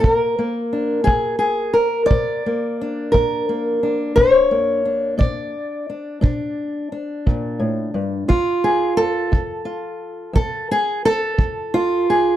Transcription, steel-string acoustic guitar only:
Already playing: A#3
0.00 A#2 A4
0.11 A#4
0.39 A#3
0.73 D4
1.04 A#2 G#4
1.39 G#4
1.74 A#4
2.06 D5
2.11 A#2
2.46 A#3
2.81 D4
3.12 A#2 A#4
3.49 A#3
3.83 D4
4.16 A#2 C#5
4.51 A#3
4.85 D4
5.18 A#2 D5
5.90 D4
6.21 A#2 D4
6.92 D4
7.26 A#2
7.59 A2
7.94 G2
8.28 F2 F4
8.64 G#4
8.97 A4
9.32 F2
9.65 F4
10.33 F2 A4
10.71 G#4
11.05 A4
11.38 F2
11.74 F4
12.10 G#4

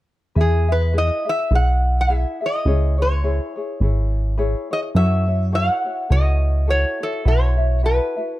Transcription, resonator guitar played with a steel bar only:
0.41 G#4
0.72 B4
0.98 D#5
1.29 E5
1.55 F#5
2.01 E5
2.46 D#5
3.02 C#5
4.73 D#5
4.96 E5
5.55 F#5
6.12 D#5
6.70 C#5
7.03 A4
7.28 C#5
7.86 B4

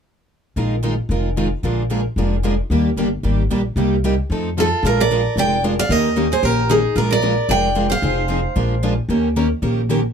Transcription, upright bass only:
0.56 A#1
1.09 F1
1.63 A#1
2.16 F1
2.70 D#2
2.97 G1
3.23 G#1
3.50 A#1
3.76 C2
4.30 F2
4.83 A#1
5.36 F1
5.89 D#2
6.43 A#1
6.96 A#1
7.49 F1
8.02 F1
8.56 A#1
9.09 D#2
9.62 A#1

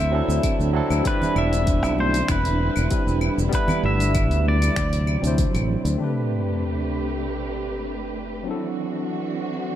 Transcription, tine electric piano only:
Already playing: F#3 C4 D4 E4 A4
0.11 F#3 C4 D4 E4 A4
0.73 F#3 C4 D4 E4 A4
1.02 G3 C4 D4
1.08 E4 D5
2.90 G3 C4 D4 E4 B4
3.49 G3 B3 D4
3.54 E4 B4
5.20 F#3 C4 D4
5.26 E4 C5
5.97 A3 C4 D4
6.02 G4 B4
8.43 F#3 C4 D4
8.49 E4 A4

